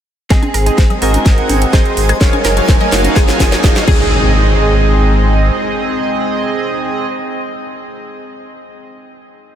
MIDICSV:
0, 0, Header, 1, 10, 480
1, 0, Start_track
1, 0, Tempo, 476190
1, 307, Time_signature, 4, 2, 24, 8
1, 9628, End_track
2, 0, Start_track
2, 0, Title_t, "Synth texture"
2, 0, Program_c, 0, 99
2, 309, Note_on_c, 0, 80, 87
2, 309, Note_on_c, 0, 92, 86
2, 4158, Note_off_c, 0, 80, 0
2, 4158, Note_off_c, 0, 92, 0
2, 9628, End_track
3, 0, Start_track
3, 0, Title_t, "Synth arpeggio sound"
3, 0, Program_c, 1, 84
3, 306, Note_on_c, 1, 68, 79
3, 375, Note_off_c, 1, 68, 0
3, 428, Note_on_c, 1, 80, 95
3, 494, Note_off_c, 1, 80, 0
3, 545, Note_on_c, 1, 70, 94
3, 587, Note_off_c, 1, 70, 0
3, 668, Note_on_c, 1, 80, 73
3, 734, Note_off_c, 1, 80, 0
3, 787, Note_on_c, 1, 72, 84
3, 828, Note_off_c, 1, 72, 0
3, 909, Note_on_c, 1, 75, 92
3, 975, Note_off_c, 1, 75, 0
3, 1027, Note_on_c, 1, 80, 75
3, 1095, Note_off_c, 1, 80, 0
3, 1266, Note_on_c, 1, 68, 81
3, 1335, Note_off_c, 1, 68, 0
3, 1746, Note_on_c, 1, 75, 84
3, 1815, Note_off_c, 1, 75, 0
3, 2109, Note_on_c, 1, 68, 95
3, 2149, Note_off_c, 1, 68, 0
3, 2227, Note_on_c, 1, 68, 82
3, 2295, Note_off_c, 1, 68, 0
3, 2349, Note_on_c, 1, 80, 99
3, 2415, Note_off_c, 1, 80, 0
3, 2466, Note_on_c, 1, 70, 99
3, 2508, Note_off_c, 1, 70, 0
3, 2589, Note_on_c, 1, 80, 76
3, 2655, Note_off_c, 1, 80, 0
3, 2707, Note_on_c, 1, 72, 82
3, 2748, Note_off_c, 1, 72, 0
3, 2829, Note_on_c, 1, 75, 98
3, 2895, Note_off_c, 1, 75, 0
3, 2947, Note_on_c, 1, 80, 77
3, 3015, Note_off_c, 1, 80, 0
3, 3186, Note_on_c, 1, 68, 81
3, 3255, Note_off_c, 1, 68, 0
3, 3667, Note_on_c, 1, 75, 81
3, 3735, Note_off_c, 1, 75, 0
3, 3907, Note_on_c, 1, 68, 96
3, 4353, Note_off_c, 1, 68, 0
3, 9628, End_track
4, 0, Start_track
4, 0, Title_t, "Analog polysynth"
4, 0, Program_c, 2, 90
4, 307, Note_on_c, 2, 60, 96
4, 307, Note_on_c, 2, 68, 86
4, 307, Note_on_c, 2, 75, 107
4, 424, Note_off_c, 2, 60, 0
4, 424, Note_off_c, 2, 68, 0
4, 424, Note_off_c, 2, 75, 0
4, 668, Note_on_c, 2, 60, 72
4, 668, Note_on_c, 2, 68, 67
4, 669, Note_on_c, 2, 75, 80
4, 781, Note_off_c, 2, 60, 0
4, 781, Note_off_c, 2, 68, 0
4, 781, Note_off_c, 2, 75, 0
4, 1027, Note_on_c, 2, 75, 97
4, 1028, Note_on_c, 2, 60, 84
4, 1028, Note_on_c, 2, 68, 82
4, 1360, Note_off_c, 2, 60, 0
4, 1360, Note_off_c, 2, 68, 0
4, 1360, Note_off_c, 2, 75, 0
4, 1390, Note_on_c, 2, 60, 91
4, 1390, Note_on_c, 2, 68, 81
4, 1390, Note_on_c, 2, 78, 97
4, 1719, Note_off_c, 2, 60, 0
4, 1719, Note_off_c, 2, 68, 0
4, 1719, Note_off_c, 2, 78, 0
4, 1747, Note_on_c, 2, 60, 95
4, 1747, Note_on_c, 2, 68, 88
4, 1747, Note_on_c, 2, 75, 110
4, 1931, Note_off_c, 2, 60, 0
4, 1932, Note_off_c, 2, 68, 0
4, 1932, Note_off_c, 2, 75, 0
4, 2226, Note_on_c, 2, 77, 111
4, 2227, Note_on_c, 2, 63, 95
4, 2227, Note_on_c, 2, 66, 90
4, 2343, Note_off_c, 2, 77, 0
4, 2344, Note_off_c, 2, 63, 0
4, 2344, Note_off_c, 2, 66, 0
4, 2589, Note_on_c, 2, 63, 76
4, 2589, Note_on_c, 2, 77, 81
4, 2590, Note_on_c, 2, 66, 70
4, 2702, Note_off_c, 2, 63, 0
4, 2702, Note_off_c, 2, 66, 0
4, 2702, Note_off_c, 2, 77, 0
4, 2947, Note_on_c, 2, 63, 88
4, 2948, Note_on_c, 2, 66, 81
4, 2948, Note_on_c, 2, 77, 96
4, 3280, Note_off_c, 2, 63, 0
4, 3280, Note_off_c, 2, 66, 0
4, 3280, Note_off_c, 2, 77, 0
4, 3309, Note_on_c, 2, 54, 78
4, 3310, Note_on_c, 2, 63, 93
4, 3310, Note_on_c, 2, 80, 104
4, 3639, Note_off_c, 2, 54, 0
4, 3639, Note_off_c, 2, 63, 0
4, 3639, Note_off_c, 2, 80, 0
4, 3667, Note_on_c, 2, 63, 100
4, 3667, Note_on_c, 2, 66, 90
4, 3667, Note_on_c, 2, 77, 105
4, 3851, Note_off_c, 2, 66, 0
4, 3851, Note_off_c, 2, 77, 0
4, 3852, Note_off_c, 2, 63, 0
4, 3907, Note_on_c, 2, 60, 84
4, 3907, Note_on_c, 2, 68, 77
4, 3907, Note_on_c, 2, 75, 98
4, 7117, Note_off_c, 2, 60, 0
4, 7117, Note_off_c, 2, 68, 0
4, 7117, Note_off_c, 2, 75, 0
4, 9628, End_track
5, 0, Start_track
5, 0, Title_t, "Clean electric guitar"
5, 0, Program_c, 3, 27
5, 306, Note_on_c, 3, 60, 74
5, 309, Note_on_c, 3, 68, 86
5, 932, Note_off_c, 3, 68, 0
5, 933, Note_off_c, 3, 60, 0
5, 1025, Note_on_c, 3, 66, 71
5, 1030, Note_on_c, 3, 70, 78
5, 1653, Note_off_c, 3, 66, 0
5, 1653, Note_off_c, 3, 70, 0
5, 1743, Note_on_c, 3, 68, 74
5, 1748, Note_on_c, 3, 72, 73
5, 2179, Note_off_c, 3, 68, 0
5, 2179, Note_off_c, 3, 72, 0
5, 2223, Note_on_c, 3, 70, 73
5, 2229, Note_on_c, 3, 73, 78
5, 3092, Note_off_c, 3, 70, 0
5, 3092, Note_off_c, 3, 73, 0
5, 3187, Note_on_c, 3, 65, 74
5, 3194, Note_on_c, 3, 68, 91
5, 3896, Note_off_c, 3, 68, 0
5, 3908, Note_off_c, 3, 65, 0
5, 3908, Note_on_c, 3, 68, 90
5, 7118, Note_off_c, 3, 68, 0
5, 9628, End_track
6, 0, Start_track
6, 0, Title_t, "Analog synth pad"
6, 0, Program_c, 4, 89
6, 308, Note_on_c, 4, 56, 73
6, 308, Note_on_c, 4, 60, 72
6, 308, Note_on_c, 4, 63, 82
6, 2208, Note_off_c, 4, 56, 0
6, 2208, Note_off_c, 4, 60, 0
6, 2226, Note_on_c, 4, 77, 89
6, 2227, Note_on_c, 4, 54, 74
6, 3871, Note_off_c, 4, 63, 0
6, 3890, Note_off_c, 4, 54, 0
6, 3890, Note_off_c, 4, 77, 0
6, 3908, Note_on_c, 4, 56, 81
6, 3909, Note_on_c, 4, 60, 78
6, 3909, Note_on_c, 4, 63, 88
6, 7118, Note_off_c, 4, 56, 0
6, 7119, Note_off_c, 4, 60, 0
6, 7119, Note_off_c, 4, 63, 0
6, 9628, End_track
7, 0, Start_track
7, 0, Title_t, "Sub bass"
7, 0, Program_c, 5, 38
7, 307, Note_on_c, 5, 32, 92
7, 387, Note_off_c, 5, 32, 0
7, 546, Note_on_c, 5, 32, 97
7, 705, Note_off_c, 5, 32, 0
7, 787, Note_on_c, 5, 32, 94
7, 867, Note_off_c, 5, 32, 0
7, 1027, Note_on_c, 5, 32, 82
7, 1185, Note_off_c, 5, 32, 0
7, 1267, Note_on_c, 5, 32, 84
7, 1425, Note_off_c, 5, 32, 0
7, 1506, Note_on_c, 5, 32, 80
7, 1665, Note_off_c, 5, 32, 0
7, 1746, Note_on_c, 5, 32, 82
7, 1826, Note_off_c, 5, 32, 0
7, 1986, Note_on_c, 5, 32, 85
7, 2144, Note_off_c, 5, 32, 0
7, 2227, Note_on_c, 5, 30, 94
7, 2307, Note_off_c, 5, 30, 0
7, 2466, Note_on_c, 5, 30, 101
7, 2624, Note_off_c, 5, 30, 0
7, 2707, Note_on_c, 5, 30, 94
7, 2787, Note_off_c, 5, 30, 0
7, 2945, Note_on_c, 5, 30, 86
7, 3104, Note_off_c, 5, 30, 0
7, 3187, Note_on_c, 5, 30, 85
7, 3345, Note_off_c, 5, 30, 0
7, 3427, Note_on_c, 5, 30, 84
7, 3585, Note_off_c, 5, 30, 0
7, 3667, Note_on_c, 5, 30, 81
7, 3747, Note_off_c, 5, 30, 0
7, 3907, Note_on_c, 5, 32, 96
7, 5547, Note_off_c, 5, 32, 0
7, 9628, End_track
8, 0, Start_track
8, 0, Title_t, "Impact"
8, 0, Program_c, 6, 103
8, 3907, Note_on_c, 6, 60, 71
8, 7157, Note_off_c, 6, 60, 0
8, 9628, End_track
9, 0, Start_track
9, 0, Title_t, "Riser"
9, 0, Program_c, 7, 103
9, 306, Note_on_c, 7, 60, 77
9, 3907, Note_off_c, 7, 60, 0
9, 9628, End_track
10, 0, Start_track
10, 0, Title_t, "Drums"
10, 307, Note_on_c, 9, 36, 106
10, 307, Note_on_c, 9, 38, 47
10, 307, Note_on_c, 9, 42, 53
10, 407, Note_off_c, 9, 36, 0
10, 407, Note_off_c, 9, 38, 0
10, 407, Note_off_c, 9, 42, 0
10, 428, Note_on_c, 9, 63, 92
10, 430, Note_on_c, 9, 42, 25
10, 529, Note_off_c, 9, 63, 0
10, 530, Note_off_c, 9, 42, 0
10, 547, Note_on_c, 9, 46, 100
10, 648, Note_off_c, 9, 46, 0
10, 670, Note_on_c, 9, 42, 52
10, 770, Note_off_c, 9, 42, 0
10, 787, Note_on_c, 9, 36, 112
10, 788, Note_on_c, 9, 38, 53
10, 788, Note_on_c, 9, 42, 54
10, 887, Note_off_c, 9, 36, 0
10, 888, Note_off_c, 9, 38, 0
10, 888, Note_off_c, 9, 42, 0
10, 909, Note_on_c, 9, 64, 78
10, 910, Note_on_c, 9, 42, 25
10, 1010, Note_off_c, 9, 64, 0
10, 1011, Note_off_c, 9, 42, 0
10, 1026, Note_on_c, 9, 46, 101
10, 1127, Note_off_c, 9, 46, 0
10, 1150, Note_on_c, 9, 42, 54
10, 1150, Note_on_c, 9, 63, 66
10, 1250, Note_off_c, 9, 63, 0
10, 1251, Note_off_c, 9, 42, 0
10, 1267, Note_on_c, 9, 36, 115
10, 1267, Note_on_c, 9, 38, 57
10, 1267, Note_on_c, 9, 42, 56
10, 1367, Note_off_c, 9, 36, 0
10, 1368, Note_off_c, 9, 38, 0
10, 1368, Note_off_c, 9, 42, 0
10, 1390, Note_on_c, 9, 42, 27
10, 1490, Note_off_c, 9, 42, 0
10, 1506, Note_on_c, 9, 46, 104
10, 1506, Note_on_c, 9, 63, 92
10, 1607, Note_off_c, 9, 46, 0
10, 1607, Note_off_c, 9, 63, 0
10, 1630, Note_on_c, 9, 42, 50
10, 1731, Note_off_c, 9, 42, 0
10, 1747, Note_on_c, 9, 36, 107
10, 1747, Note_on_c, 9, 38, 64
10, 1747, Note_on_c, 9, 42, 56
10, 1847, Note_off_c, 9, 36, 0
10, 1848, Note_off_c, 9, 38, 0
10, 1848, Note_off_c, 9, 42, 0
10, 1870, Note_on_c, 9, 42, 26
10, 1971, Note_off_c, 9, 42, 0
10, 1987, Note_on_c, 9, 46, 101
10, 2087, Note_off_c, 9, 46, 0
10, 2109, Note_on_c, 9, 37, 64
10, 2109, Note_on_c, 9, 42, 55
10, 2210, Note_off_c, 9, 37, 0
10, 2210, Note_off_c, 9, 42, 0
10, 2227, Note_on_c, 9, 36, 120
10, 2227, Note_on_c, 9, 38, 73
10, 2227, Note_on_c, 9, 42, 54
10, 2327, Note_off_c, 9, 36, 0
10, 2328, Note_off_c, 9, 38, 0
10, 2328, Note_off_c, 9, 42, 0
10, 2349, Note_on_c, 9, 42, 25
10, 2350, Note_on_c, 9, 63, 98
10, 2450, Note_off_c, 9, 42, 0
10, 2450, Note_off_c, 9, 63, 0
10, 2466, Note_on_c, 9, 38, 76
10, 2466, Note_on_c, 9, 46, 107
10, 2567, Note_off_c, 9, 38, 0
10, 2567, Note_off_c, 9, 46, 0
10, 2589, Note_on_c, 9, 42, 50
10, 2690, Note_off_c, 9, 42, 0
10, 2706, Note_on_c, 9, 38, 83
10, 2706, Note_on_c, 9, 42, 53
10, 2707, Note_on_c, 9, 36, 122
10, 2807, Note_off_c, 9, 36, 0
10, 2807, Note_off_c, 9, 38, 0
10, 2807, Note_off_c, 9, 42, 0
10, 2829, Note_on_c, 9, 42, 27
10, 2830, Note_on_c, 9, 64, 83
10, 2930, Note_off_c, 9, 42, 0
10, 2931, Note_off_c, 9, 64, 0
10, 2947, Note_on_c, 9, 38, 89
10, 2947, Note_on_c, 9, 46, 104
10, 3047, Note_off_c, 9, 38, 0
10, 3047, Note_off_c, 9, 46, 0
10, 3069, Note_on_c, 9, 42, 53
10, 3070, Note_on_c, 9, 63, 69
10, 3170, Note_off_c, 9, 42, 0
10, 3171, Note_off_c, 9, 63, 0
10, 3187, Note_on_c, 9, 36, 120
10, 3188, Note_on_c, 9, 38, 94
10, 3188, Note_on_c, 9, 42, 56
10, 3287, Note_off_c, 9, 36, 0
10, 3289, Note_off_c, 9, 38, 0
10, 3289, Note_off_c, 9, 42, 0
10, 3311, Note_on_c, 9, 38, 86
10, 3311, Note_on_c, 9, 42, 26
10, 3412, Note_off_c, 9, 38, 0
10, 3412, Note_off_c, 9, 42, 0
10, 3427, Note_on_c, 9, 36, 63
10, 3428, Note_on_c, 9, 63, 100
10, 3428, Note_on_c, 9, 64, 100
10, 3429, Note_on_c, 9, 38, 96
10, 3429, Note_on_c, 9, 46, 110
10, 3527, Note_off_c, 9, 36, 0
10, 3529, Note_off_c, 9, 63, 0
10, 3529, Note_off_c, 9, 64, 0
10, 3530, Note_off_c, 9, 38, 0
10, 3530, Note_off_c, 9, 46, 0
10, 3551, Note_on_c, 9, 38, 83
10, 3551, Note_on_c, 9, 42, 55
10, 3652, Note_off_c, 9, 38, 0
10, 3652, Note_off_c, 9, 42, 0
10, 3667, Note_on_c, 9, 36, 118
10, 3668, Note_on_c, 9, 38, 101
10, 3668, Note_on_c, 9, 42, 57
10, 3768, Note_off_c, 9, 36, 0
10, 3769, Note_off_c, 9, 38, 0
10, 3769, Note_off_c, 9, 42, 0
10, 3790, Note_on_c, 9, 64, 85
10, 3791, Note_on_c, 9, 38, 89
10, 3791, Note_on_c, 9, 42, 27
10, 3891, Note_off_c, 9, 64, 0
10, 3892, Note_off_c, 9, 38, 0
10, 3892, Note_off_c, 9, 42, 0
10, 3907, Note_on_c, 9, 36, 116
10, 3907, Note_on_c, 9, 49, 85
10, 4008, Note_off_c, 9, 36, 0
10, 4008, Note_off_c, 9, 49, 0
10, 9628, End_track
0, 0, End_of_file